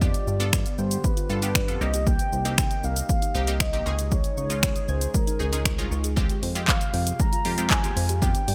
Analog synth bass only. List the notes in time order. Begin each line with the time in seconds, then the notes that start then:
Already playing: F2
0.27 G2
0.79 G2
1.30 G2
1.68 F2
1.81 C2
2.32 C2
2.84 C2
3.35 C2
3.73 A#1
3.86 C#2
4.37 C#2
4.89 C#2
5.40 C#2
5.78 C2
5.91 C#2
6.43 F2
6.94 F2
7.45 F2
7.84 D#2
7.96 F2
8.48 G2